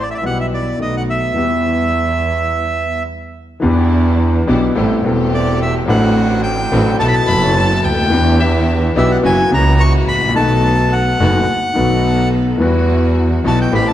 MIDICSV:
0, 0, Header, 1, 6, 480
1, 0, Start_track
1, 0, Key_signature, 1, "minor"
1, 0, Tempo, 564440
1, 1157, Time_signature, 4, 2, 24, 8
1, 5002, Tempo, 560224
1, 11899, End_track
2, 0, Start_track
2, 0, Title_t, "Violin"
2, 0, Program_c, 0, 40
2, 5968, Note_on_c, 0, 81, 87
2, 6075, Note_off_c, 0, 81, 0
2, 6191, Note_on_c, 0, 83, 113
2, 6420, Note_off_c, 0, 83, 0
2, 6446, Note_on_c, 0, 81, 103
2, 6684, Note_on_c, 0, 79, 112
2, 6697, Note_off_c, 0, 81, 0
2, 7163, Note_on_c, 0, 76, 85
2, 7176, Note_off_c, 0, 79, 0
2, 7521, Note_off_c, 0, 76, 0
2, 11899, End_track
3, 0, Start_track
3, 0, Title_t, "Bandoneon"
3, 0, Program_c, 1, 23
3, 22, Note_on_c, 1, 74, 74
3, 78, Note_off_c, 1, 74, 0
3, 90, Note_on_c, 1, 76, 76
3, 116, Note_off_c, 1, 76, 0
3, 121, Note_on_c, 1, 74, 61
3, 146, Note_off_c, 1, 74, 0
3, 148, Note_on_c, 1, 76, 73
3, 206, Note_off_c, 1, 76, 0
3, 221, Note_on_c, 1, 78, 87
3, 323, Note_off_c, 1, 78, 0
3, 344, Note_on_c, 1, 76, 75
3, 393, Note_off_c, 1, 76, 0
3, 461, Note_on_c, 1, 74, 72
3, 673, Note_off_c, 1, 74, 0
3, 696, Note_on_c, 1, 75, 74
3, 811, Note_off_c, 1, 75, 0
3, 826, Note_on_c, 1, 78, 83
3, 874, Note_off_c, 1, 78, 0
3, 936, Note_on_c, 1, 76, 82
3, 2576, Note_off_c, 1, 76, 0
3, 4543, Note_on_c, 1, 74, 81
3, 4757, Note_off_c, 1, 74, 0
3, 4780, Note_on_c, 1, 76, 81
3, 4884, Note_off_c, 1, 76, 0
3, 5011, Note_on_c, 1, 78, 89
3, 5455, Note_off_c, 1, 78, 0
3, 5474, Note_on_c, 1, 79, 104
3, 5925, Note_off_c, 1, 79, 0
3, 5954, Note_on_c, 1, 81, 109
3, 6014, Note_off_c, 1, 81, 0
3, 6029, Note_on_c, 1, 83, 89
3, 6076, Note_on_c, 1, 81, 119
3, 6086, Note_off_c, 1, 83, 0
3, 6646, Note_off_c, 1, 81, 0
3, 7655, Note_on_c, 1, 76, 95
3, 7771, Note_off_c, 1, 76, 0
3, 7772, Note_on_c, 1, 78, 91
3, 7823, Note_off_c, 1, 78, 0
3, 7890, Note_on_c, 1, 80, 110
3, 8108, Note_off_c, 1, 80, 0
3, 8137, Note_on_c, 1, 82, 97
3, 8362, Note_on_c, 1, 85, 122
3, 8375, Note_off_c, 1, 82, 0
3, 8469, Note_off_c, 1, 85, 0
3, 8600, Note_on_c, 1, 83, 105
3, 8822, Note_off_c, 1, 83, 0
3, 8838, Note_on_c, 1, 81, 103
3, 9323, Note_on_c, 1, 78, 99
3, 9331, Note_off_c, 1, 81, 0
3, 10490, Note_off_c, 1, 78, 0
3, 11505, Note_on_c, 1, 81, 100
3, 11607, Note_off_c, 1, 81, 0
3, 11627, Note_on_c, 1, 79, 85
3, 11728, Note_off_c, 1, 79, 0
3, 11743, Note_on_c, 1, 83, 101
3, 11853, Note_on_c, 1, 81, 93
3, 11857, Note_off_c, 1, 83, 0
3, 11899, Note_off_c, 1, 81, 0
3, 11899, End_track
4, 0, Start_track
4, 0, Title_t, "String section"
4, 0, Program_c, 2, 48
4, 0, Note_on_c, 2, 57, 60
4, 0, Note_on_c, 2, 60, 52
4, 0, Note_on_c, 2, 64, 67
4, 151, Note_off_c, 2, 57, 0
4, 152, Note_off_c, 2, 60, 0
4, 152, Note_off_c, 2, 64, 0
4, 193, Note_on_c, 2, 55, 62
4, 197, Note_on_c, 2, 59, 55
4, 198, Note_on_c, 2, 64, 61
4, 651, Note_off_c, 2, 55, 0
4, 653, Note_off_c, 2, 59, 0
4, 653, Note_off_c, 2, 64, 0
4, 674, Note_on_c, 2, 57, 56
4, 677, Note_on_c, 2, 59, 46
4, 680, Note_on_c, 2, 63, 59
4, 1131, Note_off_c, 2, 57, 0
4, 1133, Note_off_c, 2, 59, 0
4, 1134, Note_off_c, 2, 63, 0
4, 1150, Note_on_c, 2, 55, 60
4, 1153, Note_on_c, 2, 59, 53
4, 1156, Note_on_c, 2, 64, 66
4, 2525, Note_off_c, 2, 55, 0
4, 2527, Note_off_c, 2, 59, 0
4, 2528, Note_off_c, 2, 64, 0
4, 3082, Note_on_c, 2, 62, 83
4, 3083, Note_on_c, 2, 55, 81
4, 3084, Note_on_c, 2, 64, 93
4, 3769, Note_off_c, 2, 55, 0
4, 3769, Note_off_c, 2, 62, 0
4, 3770, Note_off_c, 2, 64, 0
4, 3809, Note_on_c, 2, 55, 77
4, 3810, Note_on_c, 2, 62, 71
4, 3812, Note_on_c, 2, 64, 92
4, 4009, Note_off_c, 2, 55, 0
4, 4010, Note_off_c, 2, 62, 0
4, 4011, Note_off_c, 2, 64, 0
4, 4040, Note_on_c, 2, 57, 84
4, 4043, Note_on_c, 2, 60, 71
4, 4046, Note_on_c, 2, 67, 85
4, 4244, Note_off_c, 2, 57, 0
4, 4246, Note_off_c, 2, 60, 0
4, 4247, Note_off_c, 2, 67, 0
4, 4279, Note_on_c, 2, 57, 83
4, 4281, Note_on_c, 2, 60, 78
4, 4284, Note_on_c, 2, 67, 99
4, 4965, Note_off_c, 2, 57, 0
4, 4966, Note_off_c, 2, 60, 0
4, 4967, Note_off_c, 2, 67, 0
4, 5004, Note_on_c, 2, 60, 88
4, 5005, Note_on_c, 2, 62, 81
4, 5007, Note_on_c, 2, 66, 94
4, 5689, Note_off_c, 2, 60, 0
4, 5690, Note_off_c, 2, 62, 0
4, 5691, Note_off_c, 2, 66, 0
4, 5724, Note_on_c, 2, 60, 80
4, 5727, Note_on_c, 2, 62, 79
4, 5728, Note_on_c, 2, 66, 95
4, 5926, Note_off_c, 2, 60, 0
4, 5928, Note_off_c, 2, 62, 0
4, 5928, Note_off_c, 2, 66, 0
4, 5969, Note_on_c, 2, 59, 91
4, 5971, Note_on_c, 2, 69, 105
4, 5973, Note_on_c, 2, 64, 79
4, 6168, Note_off_c, 2, 59, 0
4, 6170, Note_off_c, 2, 69, 0
4, 6171, Note_off_c, 2, 64, 0
4, 6207, Note_on_c, 2, 59, 98
4, 6207, Note_on_c, 2, 64, 84
4, 6211, Note_on_c, 2, 69, 101
4, 6889, Note_off_c, 2, 59, 0
4, 6889, Note_off_c, 2, 64, 0
4, 6891, Note_off_c, 2, 69, 0
4, 6925, Note_on_c, 2, 62, 87
4, 6926, Note_on_c, 2, 64, 88
4, 6927, Note_on_c, 2, 67, 101
4, 7605, Note_off_c, 2, 62, 0
4, 7606, Note_off_c, 2, 64, 0
4, 7606, Note_off_c, 2, 67, 0
4, 7639, Note_on_c, 2, 64, 79
4, 7641, Note_on_c, 2, 62, 86
4, 7645, Note_on_c, 2, 67, 99
4, 7841, Note_off_c, 2, 62, 0
4, 7841, Note_off_c, 2, 64, 0
4, 7843, Note_off_c, 2, 67, 0
4, 7878, Note_on_c, 2, 58, 95
4, 7878, Note_on_c, 2, 64, 86
4, 7883, Note_on_c, 2, 66, 100
4, 8080, Note_off_c, 2, 58, 0
4, 8080, Note_off_c, 2, 64, 0
4, 8082, Note_off_c, 2, 66, 0
4, 8121, Note_on_c, 2, 58, 91
4, 8121, Note_on_c, 2, 64, 83
4, 8124, Note_on_c, 2, 66, 102
4, 8803, Note_off_c, 2, 58, 0
4, 8803, Note_off_c, 2, 64, 0
4, 8804, Note_off_c, 2, 66, 0
4, 8835, Note_on_c, 2, 59, 90
4, 8836, Note_on_c, 2, 63, 75
4, 8836, Note_on_c, 2, 69, 109
4, 9520, Note_off_c, 2, 59, 0
4, 9520, Note_off_c, 2, 63, 0
4, 9520, Note_off_c, 2, 69, 0
4, 9561, Note_on_c, 2, 63, 82
4, 9563, Note_on_c, 2, 59, 82
4, 9565, Note_on_c, 2, 69, 87
4, 9761, Note_off_c, 2, 63, 0
4, 9762, Note_off_c, 2, 59, 0
4, 9763, Note_off_c, 2, 69, 0
4, 10032, Note_on_c, 2, 59, 88
4, 10035, Note_on_c, 2, 63, 81
4, 10036, Note_on_c, 2, 69, 86
4, 10722, Note_off_c, 2, 59, 0
4, 10724, Note_off_c, 2, 63, 0
4, 10724, Note_off_c, 2, 69, 0
4, 10757, Note_on_c, 2, 55, 87
4, 10762, Note_on_c, 2, 64, 73
4, 10762, Note_on_c, 2, 66, 95
4, 11445, Note_off_c, 2, 55, 0
4, 11447, Note_off_c, 2, 64, 0
4, 11447, Note_off_c, 2, 66, 0
4, 11483, Note_on_c, 2, 55, 87
4, 11485, Note_on_c, 2, 64, 75
4, 11486, Note_on_c, 2, 66, 88
4, 11685, Note_off_c, 2, 55, 0
4, 11686, Note_off_c, 2, 64, 0
4, 11687, Note_off_c, 2, 66, 0
4, 11719, Note_on_c, 2, 57, 78
4, 11720, Note_on_c, 2, 60, 75
4, 11725, Note_on_c, 2, 67, 90
4, 11899, Note_off_c, 2, 57, 0
4, 11899, Note_off_c, 2, 60, 0
4, 11899, Note_off_c, 2, 67, 0
4, 11899, End_track
5, 0, Start_track
5, 0, Title_t, "Grand piano"
5, 0, Program_c, 3, 0
5, 0, Note_on_c, 3, 33, 67
5, 0, Note_on_c, 3, 45, 70
5, 0, Note_on_c, 3, 52, 54
5, 0, Note_on_c, 3, 57, 50
5, 0, Note_on_c, 3, 60, 52
5, 0, Note_on_c, 3, 69, 60
5, 146, Note_off_c, 3, 52, 0
5, 152, Note_off_c, 3, 57, 0
5, 153, Note_off_c, 3, 45, 0
5, 154, Note_off_c, 3, 33, 0
5, 157, Note_off_c, 3, 60, 0
5, 164, Note_off_c, 3, 69, 0
5, 185, Note_on_c, 3, 52, 51
5, 193, Note_on_c, 3, 55, 45
5, 199, Note_on_c, 3, 47, 65
5, 201, Note_on_c, 3, 35, 64
5, 204, Note_on_c, 3, 59, 45
5, 216, Note_on_c, 3, 67, 61
5, 647, Note_off_c, 3, 52, 0
5, 651, Note_off_c, 3, 55, 0
5, 654, Note_off_c, 3, 47, 0
5, 655, Note_off_c, 3, 35, 0
5, 657, Note_off_c, 3, 59, 0
5, 663, Note_off_c, 3, 67, 0
5, 663, Note_on_c, 3, 51, 46
5, 675, Note_on_c, 3, 57, 45
5, 679, Note_on_c, 3, 35, 50
5, 681, Note_on_c, 3, 47, 57
5, 684, Note_on_c, 3, 59, 43
5, 696, Note_on_c, 3, 66, 51
5, 1126, Note_off_c, 3, 51, 0
5, 1132, Note_off_c, 3, 57, 0
5, 1134, Note_off_c, 3, 35, 0
5, 1135, Note_off_c, 3, 47, 0
5, 1136, Note_off_c, 3, 59, 0
5, 1140, Note_on_c, 3, 52, 64
5, 1142, Note_off_c, 3, 66, 0
5, 1153, Note_on_c, 3, 55, 50
5, 1155, Note_on_c, 3, 40, 66
5, 1160, Note_on_c, 3, 59, 48
5, 1173, Note_on_c, 3, 67, 61
5, 2527, Note_off_c, 3, 55, 0
5, 2528, Note_off_c, 3, 40, 0
5, 2529, Note_off_c, 3, 52, 0
5, 2530, Note_off_c, 3, 59, 0
5, 2537, Note_off_c, 3, 67, 0
5, 3060, Note_on_c, 3, 52, 73
5, 3071, Note_on_c, 3, 59, 72
5, 3073, Note_off_c, 3, 52, 0
5, 3079, Note_on_c, 3, 40, 96
5, 3079, Note_on_c, 3, 52, 97
5, 3083, Note_on_c, 3, 62, 74
5, 3095, Note_on_c, 3, 67, 87
5, 3764, Note_off_c, 3, 59, 0
5, 3767, Note_off_c, 3, 40, 0
5, 3767, Note_off_c, 3, 52, 0
5, 3769, Note_off_c, 3, 62, 0
5, 3775, Note_off_c, 3, 67, 0
5, 3802, Note_on_c, 3, 47, 92
5, 3803, Note_on_c, 3, 52, 81
5, 3803, Note_on_c, 3, 59, 70
5, 3805, Note_on_c, 3, 35, 93
5, 3805, Note_on_c, 3, 62, 74
5, 3806, Note_on_c, 3, 67, 85
5, 4006, Note_off_c, 3, 47, 0
5, 4006, Note_off_c, 3, 52, 0
5, 4006, Note_off_c, 3, 59, 0
5, 4007, Note_off_c, 3, 35, 0
5, 4007, Note_off_c, 3, 62, 0
5, 4008, Note_off_c, 3, 67, 0
5, 4042, Note_on_c, 3, 33, 83
5, 4042, Note_on_c, 3, 55, 70
5, 4042, Note_on_c, 3, 60, 68
5, 4042, Note_on_c, 3, 64, 73
5, 4043, Note_on_c, 3, 45, 94
5, 4045, Note_on_c, 3, 69, 87
5, 4245, Note_off_c, 3, 60, 0
5, 4245, Note_off_c, 3, 64, 0
5, 4246, Note_off_c, 3, 33, 0
5, 4246, Note_off_c, 3, 45, 0
5, 4246, Note_off_c, 3, 55, 0
5, 4247, Note_off_c, 3, 69, 0
5, 4268, Note_on_c, 3, 55, 71
5, 4279, Note_on_c, 3, 60, 70
5, 4285, Note_on_c, 3, 28, 90
5, 4287, Note_on_c, 3, 40, 86
5, 4291, Note_on_c, 3, 64, 69
5, 4304, Note_on_c, 3, 69, 84
5, 4959, Note_off_c, 3, 55, 0
5, 4965, Note_off_c, 3, 60, 0
5, 4968, Note_off_c, 3, 28, 0
5, 4969, Note_off_c, 3, 40, 0
5, 4971, Note_off_c, 3, 64, 0
5, 4977, Note_off_c, 3, 69, 0
5, 4981, Note_on_c, 3, 54, 84
5, 4997, Note_on_c, 3, 60, 71
5, 4998, Note_on_c, 3, 33, 101
5, 5002, Note_on_c, 3, 45, 103
5, 5006, Note_on_c, 3, 62, 75
5, 5017, Note_on_c, 3, 69, 88
5, 5678, Note_off_c, 3, 54, 0
5, 5686, Note_off_c, 3, 33, 0
5, 5686, Note_off_c, 3, 60, 0
5, 5688, Note_off_c, 3, 45, 0
5, 5690, Note_off_c, 3, 62, 0
5, 5696, Note_off_c, 3, 69, 0
5, 5718, Note_on_c, 3, 60, 72
5, 5719, Note_on_c, 3, 54, 78
5, 5721, Note_on_c, 3, 45, 98
5, 5721, Note_on_c, 3, 62, 74
5, 5723, Note_on_c, 3, 33, 92
5, 5724, Note_on_c, 3, 69, 84
5, 5923, Note_off_c, 3, 54, 0
5, 5923, Note_off_c, 3, 60, 0
5, 5925, Note_off_c, 3, 45, 0
5, 5925, Note_off_c, 3, 62, 0
5, 5926, Note_off_c, 3, 33, 0
5, 5926, Note_off_c, 3, 69, 0
5, 5955, Note_on_c, 3, 59, 71
5, 5956, Note_on_c, 3, 47, 96
5, 5956, Note_on_c, 3, 54, 76
5, 5958, Note_on_c, 3, 35, 95
5, 5959, Note_on_c, 3, 64, 68
5, 5960, Note_on_c, 3, 69, 87
5, 6161, Note_off_c, 3, 59, 0
5, 6162, Note_off_c, 3, 47, 0
5, 6162, Note_off_c, 3, 54, 0
5, 6163, Note_off_c, 3, 35, 0
5, 6163, Note_off_c, 3, 64, 0
5, 6164, Note_off_c, 3, 69, 0
5, 6183, Note_on_c, 3, 54, 76
5, 6199, Note_on_c, 3, 59, 69
5, 6202, Note_on_c, 3, 30, 84
5, 6204, Note_on_c, 3, 42, 90
5, 6207, Note_on_c, 3, 64, 72
5, 6219, Note_on_c, 3, 69, 76
5, 6745, Note_on_c, 3, 37, 55
5, 6803, Note_on_c, 3, 38, 70
5, 6804, Note_off_c, 3, 37, 0
5, 6863, Note_off_c, 3, 38, 0
5, 6866, Note_on_c, 3, 39, 82
5, 6877, Note_off_c, 3, 54, 0
5, 6885, Note_off_c, 3, 59, 0
5, 6886, Note_off_c, 3, 30, 0
5, 6887, Note_off_c, 3, 42, 0
5, 6889, Note_off_c, 3, 64, 0
5, 6895, Note_off_c, 3, 69, 0
5, 6904, Note_on_c, 3, 52, 102
5, 6913, Note_on_c, 3, 59, 78
5, 6921, Note_on_c, 3, 40, 105
5, 6925, Note_off_c, 3, 39, 0
5, 6929, Note_on_c, 3, 62, 77
5, 6938, Note_on_c, 3, 67, 85
5, 7600, Note_off_c, 3, 59, 0
5, 7603, Note_off_c, 3, 40, 0
5, 7603, Note_off_c, 3, 52, 0
5, 7607, Note_off_c, 3, 62, 0
5, 7612, Note_off_c, 3, 67, 0
5, 7639, Note_on_c, 3, 52, 80
5, 7639, Note_on_c, 3, 62, 69
5, 7640, Note_on_c, 3, 35, 88
5, 7640, Note_on_c, 3, 59, 74
5, 7641, Note_on_c, 3, 47, 103
5, 7641, Note_on_c, 3, 67, 96
5, 7841, Note_off_c, 3, 35, 0
5, 7841, Note_off_c, 3, 47, 0
5, 7841, Note_off_c, 3, 52, 0
5, 7841, Note_off_c, 3, 59, 0
5, 7841, Note_off_c, 3, 62, 0
5, 7842, Note_off_c, 3, 67, 0
5, 7870, Note_on_c, 3, 52, 81
5, 7871, Note_on_c, 3, 61, 71
5, 7873, Note_on_c, 3, 58, 71
5, 7875, Note_on_c, 3, 42, 85
5, 7876, Note_on_c, 3, 54, 99
5, 7877, Note_on_c, 3, 66, 90
5, 8076, Note_off_c, 3, 52, 0
5, 8076, Note_off_c, 3, 61, 0
5, 8078, Note_off_c, 3, 42, 0
5, 8078, Note_off_c, 3, 58, 0
5, 8079, Note_off_c, 3, 54, 0
5, 8079, Note_off_c, 3, 66, 0
5, 8097, Note_on_c, 3, 52, 77
5, 8107, Note_on_c, 3, 58, 72
5, 8114, Note_on_c, 3, 37, 85
5, 8114, Note_on_c, 3, 49, 88
5, 8119, Note_on_c, 3, 61, 70
5, 8130, Note_on_c, 3, 66, 91
5, 8658, Note_on_c, 3, 32, 59
5, 8714, Note_on_c, 3, 33, 62
5, 8718, Note_off_c, 3, 32, 0
5, 8775, Note_on_c, 3, 34, 85
5, 8776, Note_off_c, 3, 33, 0
5, 8791, Note_off_c, 3, 52, 0
5, 8796, Note_off_c, 3, 58, 0
5, 8799, Note_off_c, 3, 37, 0
5, 8799, Note_off_c, 3, 49, 0
5, 8802, Note_off_c, 3, 61, 0
5, 8808, Note_off_c, 3, 66, 0
5, 8820, Note_on_c, 3, 51, 91
5, 8834, Note_on_c, 3, 57, 81
5, 8836, Note_off_c, 3, 34, 0
5, 8836, Note_on_c, 3, 35, 98
5, 8840, Note_on_c, 3, 47, 90
5, 8842, Note_on_c, 3, 59, 77
5, 8853, Note_on_c, 3, 66, 87
5, 9512, Note_off_c, 3, 51, 0
5, 9519, Note_off_c, 3, 57, 0
5, 9521, Note_off_c, 3, 35, 0
5, 9522, Note_off_c, 3, 47, 0
5, 9523, Note_off_c, 3, 59, 0
5, 9529, Note_off_c, 3, 66, 0
5, 9557, Note_on_c, 3, 30, 95
5, 9557, Note_on_c, 3, 51, 84
5, 9561, Note_on_c, 3, 42, 92
5, 9561, Note_on_c, 3, 57, 71
5, 9562, Note_on_c, 3, 59, 68
5, 9563, Note_on_c, 3, 66, 87
5, 9759, Note_off_c, 3, 30, 0
5, 9759, Note_off_c, 3, 51, 0
5, 9761, Note_off_c, 3, 42, 0
5, 9761, Note_off_c, 3, 57, 0
5, 9762, Note_off_c, 3, 59, 0
5, 9762, Note_off_c, 3, 66, 0
5, 10017, Note_on_c, 3, 51, 73
5, 10027, Note_on_c, 3, 57, 66
5, 10030, Note_on_c, 3, 47, 89
5, 10031, Note_on_c, 3, 35, 83
5, 10037, Note_on_c, 3, 59, 70
5, 10051, Note_on_c, 3, 66, 75
5, 10715, Note_off_c, 3, 51, 0
5, 10720, Note_off_c, 3, 57, 0
5, 10722, Note_off_c, 3, 35, 0
5, 10722, Note_off_c, 3, 47, 0
5, 10725, Note_off_c, 3, 59, 0
5, 10732, Note_off_c, 3, 66, 0
5, 10737, Note_on_c, 3, 52, 81
5, 10749, Note_off_c, 3, 52, 0
5, 10752, Note_on_c, 3, 55, 73
5, 10755, Note_on_c, 3, 52, 89
5, 10757, Note_on_c, 3, 40, 91
5, 10761, Note_on_c, 3, 59, 73
5, 10773, Note_on_c, 3, 66, 93
5, 11442, Note_off_c, 3, 55, 0
5, 11444, Note_off_c, 3, 52, 0
5, 11445, Note_off_c, 3, 40, 0
5, 11447, Note_off_c, 3, 59, 0
5, 11453, Note_off_c, 3, 66, 0
5, 11478, Note_on_c, 3, 52, 77
5, 11479, Note_on_c, 3, 47, 98
5, 11479, Note_on_c, 3, 55, 66
5, 11481, Note_on_c, 3, 35, 88
5, 11483, Note_on_c, 3, 59, 64
5, 11484, Note_on_c, 3, 66, 80
5, 11683, Note_off_c, 3, 47, 0
5, 11683, Note_off_c, 3, 52, 0
5, 11683, Note_off_c, 3, 55, 0
5, 11684, Note_off_c, 3, 35, 0
5, 11685, Note_off_c, 3, 59, 0
5, 11686, Note_off_c, 3, 66, 0
5, 11720, Note_on_c, 3, 52, 74
5, 11721, Note_on_c, 3, 45, 90
5, 11721, Note_on_c, 3, 57, 73
5, 11723, Note_on_c, 3, 33, 88
5, 11723, Note_on_c, 3, 67, 89
5, 11725, Note_on_c, 3, 60, 67
5, 11899, Note_off_c, 3, 33, 0
5, 11899, Note_off_c, 3, 45, 0
5, 11899, Note_off_c, 3, 52, 0
5, 11899, Note_off_c, 3, 57, 0
5, 11899, Note_off_c, 3, 60, 0
5, 11899, Note_off_c, 3, 67, 0
5, 11899, End_track
6, 0, Start_track
6, 0, Title_t, "Double bass"
6, 0, Program_c, 4, 43
6, 0, Note_on_c, 4, 33, 65
6, 153, Note_off_c, 4, 33, 0
6, 196, Note_on_c, 4, 35, 60
6, 652, Note_off_c, 4, 35, 0
6, 670, Note_on_c, 4, 35, 66
6, 1129, Note_off_c, 4, 35, 0
6, 1151, Note_on_c, 4, 40, 72
6, 2526, Note_off_c, 4, 40, 0
6, 3083, Note_on_c, 4, 40, 101
6, 3769, Note_off_c, 4, 40, 0
6, 3808, Note_on_c, 4, 35, 102
6, 4009, Note_off_c, 4, 35, 0
6, 4049, Note_on_c, 4, 33, 86
6, 4249, Note_off_c, 4, 33, 0
6, 4287, Note_on_c, 4, 28, 110
6, 4969, Note_off_c, 4, 28, 0
6, 5010, Note_on_c, 4, 33, 101
6, 5692, Note_off_c, 4, 33, 0
6, 5726, Note_on_c, 4, 33, 108
6, 5927, Note_off_c, 4, 33, 0
6, 5961, Note_on_c, 4, 35, 86
6, 6164, Note_off_c, 4, 35, 0
6, 6209, Note_on_c, 4, 30, 108
6, 6683, Note_off_c, 4, 30, 0
6, 6688, Note_on_c, 4, 38, 70
6, 6917, Note_off_c, 4, 38, 0
6, 6922, Note_on_c, 4, 40, 108
6, 7604, Note_off_c, 4, 40, 0
6, 7645, Note_on_c, 4, 35, 102
6, 7844, Note_off_c, 4, 35, 0
6, 7878, Note_on_c, 4, 30, 93
6, 8080, Note_off_c, 4, 30, 0
6, 8118, Note_on_c, 4, 37, 114
6, 8591, Note_off_c, 4, 37, 0
6, 8596, Note_on_c, 4, 33, 74
6, 8836, Note_off_c, 4, 33, 0
6, 8842, Note_on_c, 4, 35, 105
6, 9523, Note_off_c, 4, 35, 0
6, 9555, Note_on_c, 4, 30, 96
6, 9758, Note_off_c, 4, 30, 0
6, 10034, Note_on_c, 4, 35, 104
6, 10723, Note_off_c, 4, 35, 0
6, 10753, Note_on_c, 4, 40, 98
6, 11443, Note_off_c, 4, 40, 0
6, 11483, Note_on_c, 4, 35, 98
6, 11685, Note_off_c, 4, 35, 0
6, 11719, Note_on_c, 4, 33, 86
6, 11899, Note_off_c, 4, 33, 0
6, 11899, End_track
0, 0, End_of_file